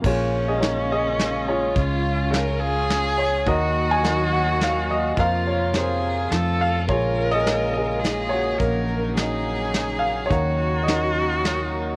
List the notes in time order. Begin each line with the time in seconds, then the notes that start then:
0.02 A#1 C#3 G#3 A#3 C#4 F4, kick, crash
0.06 F4 G#4 C#5
0.48 G#4 D#5
0.59 G#4 A#4 C#5, snare, closed hi-hat
0.92 G#4 D#5
1.19 snare, closed hi-hat
1.48 F4 G#4 C#5
1.74 C#2 C#3 C#4 F4, kick, closed hi-hat
2.31 G#4 A#4 C#5 F5, snare, closed hi-hat
2.59 G#4
2.90 snare, closed hi-hat
3.18 C#5
3.46 D#2 D#3 F#3 A#3 F#4 A#4 D#5, kick, closed hi-hat
3.91 D#5 G#5
4.03 D#4 F#4 A#4, snare, closed hi-hat
4.33 F#5
4.61 F5, snare, closed hi-hat
4.91 D#5
5.16 F2 C3 F3 F4 A#4 C5 F5, kick, closed hi-hat
5.47 C#5
5.73 C4 F4 G#4 A#4 C5, snare, closed hi-hat
5.78 F4
6.30 F2 F3 A3 A4, snare, closed hi-hat
6.61 F5
6.87 A#1 C#3 G#3 A#3 A#4 C#5, kick, closed hi-hat
6.91 F4 G#4
7.31 G#4 D#5
7.44 G#4 A#4 C#5, snare, closed hi-hat
7.73 D#5
7.77 G#4
8.00 G#4, closed hi-hat
8.05 snare
8.29 C#5
8.33 F#4
8.58 A#1 F#3 A#3 D#4 A#4, kick, closed hi-hat
9.16 F#4 G#4 A#4 D#5, snare, closed hi-hat
9.74 snare, closed hi-hat
9.99 F5
10.26 D#3 C#5
10.30 D#2 F#3 A#3 D#4 F#4 A#4, kick, closed hi-hat
10.83 C#4 D#4 D#5
10.88 F#4 A#4, snare, closed hi-hat
11.45 snare, closed hi-hat